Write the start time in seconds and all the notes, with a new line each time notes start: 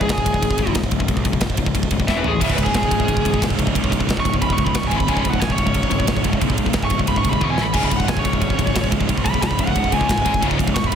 0.00 C#2 G#2 G#4, kick
0.08 E1 C#2 G#2 G#4, kick, snare, ride
0.18 kick
0.26 C#1 C#2 G#2, kick, ride
0.33 C#2 G#2, kick
0.42 G#1 C#2 G#2, kick, ride
0.51 kick
0.58 C#2 G#2, kick, ride
0.67 C#2 G#2, kick
0.74 E1 C#2 G#2, kick, snare, ride
0.84 kick
0.91 C#1 C#2 G#2, kick, ride
1.00 C#2 G#2, kick
1.08 B1 C#2 G#2, kick, ride
1.17 kick
1.25 C#2 G#2, kick, ride
1.32 C#2 G#2, kick
1.41 C#1 C#2 G#2, kick, snare, ride
1.50 kick
1.57 C#1 C#2 G#2, kick, ride
1.66 C#2 G#2, kick
1.75 C#1 C#2 G#2, kick, ride
1.83 kick
1.91 D#1 C#2 G#2, kick, ride
2.00 C#2 G#2, kick
2.08 E1 E2 B2 E3 E5, kick, snare
2.17 B4
2.24 A1 A2 E3 A3, floor tom
2.28 G#4
2.34 A2 E3
2.40 C#1 C#2 G#2 C#3 E5, kick, crash, ride
2.50 B4, kick
2.58 C#1 C#2 G#2, kick, ride
2.64 C#2 G#2 G#4, kick
2.71 E1 C#2 G#4, kick, ride
2.75 C#2 G#2, snare
2.83 kick
2.88 C#1 C#2 G#2, kick, ride
2.92 C#2 G#2
3.00 C#2 G#2, kick
3.05 G#1 C#2 G#2, kick
3.09 C#2 G#2, ride
3.17 kick
3.21 G#2, kick
3.26 C#2 G#2, ride
3.34 C#2 G#2, kick
3.42 E1 C#2 G#2, kick, snare, ride
3.50 kick
3.58 C#1 C#2 G#2, kick, ride
3.66 C#2 G#2, kick
3.74 B1 C#2 G#2 C#3, kick, ride
3.84 kick
3.90 C#2 G#2, kick, ride
3.99 C#2 G#2, kick
4.08 C#1 C#2 G#2, kick, snare, ride
4.17 C#6, kick
4.25 C#1 C#2 G#2, kick, ride
4.33 C#2 G#2, kick
4.42 C#1 C#2 G#2 B5, kick, ride
4.50 C#6, kick
4.58 C#2 G#2, kick, ride
4.64 C#2 G#2 B5, kick
4.74 C#1 C#2 G#2 C#6, kick, snare, ride
4.83 kick
4.88 G#1 G#2 G#5, ride
4.92 D#3 G#3, kick
4.96 G#2 D#3 B5
5.00 kick
5.08 C#1 C#2 G#2 C#3 G#5, kick, ride
5.17 B5, kick
5.25 C#1 C#2 G#2, kick, ride
5.30 C#2 G#2 F#5, kick
5.40 E1 C#2 G#2 G#5, kick, snare, ride
5.50 C#5, kick
5.58 C#1 C#2 G#2, kick, ride
5.66 C#2 G#2, kick
5.73 G#1 C#2 G#2, kick, ride
5.83 kick
5.90 C#2 G#2, kick, ride
5.99 C#2 G#2, kick
6.07 E1 C#2 G#2, kick, snare, ride
6.16 kick
6.24 C#1 C#2 G#2, kick, ride
6.33 C#2 G#2, kick
6.40 B1 C#2 G#2 C#3, kick, ride
6.50 kick
6.58 C#2 G#2, kick, ride
6.66 C#2 G#2, kick
6.73 C#1 C#2 G#2, kick, snare, ride
6.83 C#6, kick
6.90 C#1 C#2 G#2, kick, ride
6.99 C#2 G#2, kick
7.07 C#1 C#2 G#2 B5, kick, ride
7.16 C#6, kick
7.23 D#1 C#2 G#2, kick, ride
7.30 C#2 G#2 B5, kick
7.41 E1 E2 B2 E3 C#6, kick, high tom
7.51 G#5
7.57 A1 A2 E3 A3, snare
7.62 A2 E3 B5
7.73 C#1 C#2 G#2 C#3 G#5, kick, crash, splash
7.83 B5, kick
7.91 C#1 C#2 G#2, kick, ride
7.96 C#2 G#2 F#5, kick
8.07 E1 C#2 G#2 G#5, kick, snare, ride
8.17 C#5, kick
8.24 C#1 C#2 G#2, kick, ride
8.32 C#2 G#2, kick
8.41 G#1 C#2 G#2, kick, ride
8.50 kick
8.58 C#2 G#2, kick, ride
8.66 C#2 G#2, kick
8.75 E1 C#2 G#2, kick, snare, ride
8.84 kick
8.91 C#1 C#2 G#2, kick, ride
9.00 C#2 G#2, kick
9.09 B1 C#2 G#2 C#3, kick, ride
9.18 kick
9.25 C#2 G#2 B5, kick, ride
9.34 C#2 G#2, kick
9.42 C#1 C#2 G#2 B5, kick, snare, ride
9.51 kick
9.59 C#1 C#2 G#2 F#5, kick, ride
9.67 C#2 G#2, kick
9.75 C#1 C#2 G#2, kick, ride
9.84 kick
9.92 C#2 G#2 G#5, kick, ride
10.01 C#2 G#2, kick
10.07 C#1 C#2 G#2 G#5, kick, snare, ride
10.18 kick
10.25 G#1 G#2 D#3 G#3, kick, ride
10.32 G#2 D#3, kick
10.42 C#1 C#2 G#2 C#3, kick, ride
10.51 kick
10.58 C#1 C#2 G#2, kick, ride
10.67 C#2 G#2, kick
10.74 E1 C#2 G#2 C#6, kick, snare, ride
10.84 B5, kick
10.92 C#2 G#2, kick, ride